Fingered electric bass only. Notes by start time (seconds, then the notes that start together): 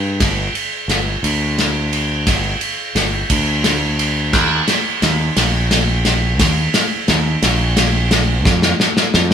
Already playing: G2
0.21 G1
0.88 G1
1.23 D2
2.27 G1
2.95 G1
3.30 D2
4.33 D#2
5.02 D#2
5.37 A#1
6.39 D#2
7.08 D#2
7.43 A#1
8.46 F2
9.14 F2